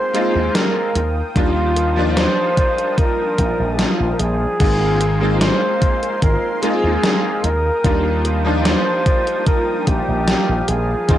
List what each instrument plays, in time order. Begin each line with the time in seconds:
Already playing: electric grand piano G#3 A#3 C4 D#4 F4, analog synth pad A#4 F5 G#5 C6, flugelhorn C5
0.13 electric grand piano G#3 A#3 C4 D#4 F4, closed hi-hat
0.35 slap bass D#2
0.55 flugelhorn A#4, snare, closed hi-hat
0.95 slap bass D#2, analog synth pad A#4 G5 D#6, closed hi-hat
1.35 slap bass D#2, electric grand piano G3 A#3 D4 D#4 F4, flugelhorn F4, kick, closed hi-hat
1.76 closed hi-hat
1.96 electric grand piano F3 A#3 D4 D#4 F4
2.17 flugelhorn C5, snare, closed hi-hat
2.57 kick, closed hi-hat
2.78 closed hi-hat
2.98 flugelhorn A#4, kick, closed hi-hat
3.38 slap bass A#1, kick, closed hi-hat
3.60 slap bass A#1
3.79 flugelhorn F4, snare, closed hi-hat
4.00 slap bass A#1
4.12 flugelhorn A#4
4.19 slap bass A#1, flugelhorn G#4, closed hi-hat
4.59 slap bass G#1, electric grand piano G#3 A#3 C4 D#4 F4, analog synth pad A#4 F5 G#5 C6, kick, closed hi-hat, crash
5.01 closed hi-hat
5.20 electric grand piano G#3 A#3 C4 D#4 F4
5.41 flugelhorn C5, snare, closed hi-hat
5.82 kick, closed hi-hat
6.03 closed hi-hat
6.22 slap bass G#1, flugelhorn A#4, kick, closed hi-hat
6.62 electric grand piano G#3 A#3 C4 D#4 F4, flugelhorn G#4, closed hi-hat
6.84 slap bass D#2
7.03 snare, closed hi-hat
7.44 slap bass D#2, analog synth pad A#4 F5 G5 D#6, flugelhorn A#4, closed hi-hat
7.84 slap bass D#2, electric grand piano G3 A#3 D4 D#4 F4, kick, closed hi-hat
8.25 closed hi-hat
8.45 electric grand piano F3 A#3 D4 D#4 F4
8.65 flugelhorn C5, snare, closed hi-hat
9.06 kick, closed hi-hat
9.27 closed hi-hat
9.46 flugelhorn A#4, kick, closed hi-hat
9.87 slap bass A#1, flugelhorn G4, kick, closed hi-hat
10.09 slap bass A#1
10.28 snare, closed hi-hat
10.49 slap bass A#1
10.68 slap bass A#1, flugelhorn G#4, closed hi-hat
11.08 slap bass G#1, electric grand piano G#3 A#3 C4 D#4 F4, analog synth pad A#4 G#5 C6, kick, closed hi-hat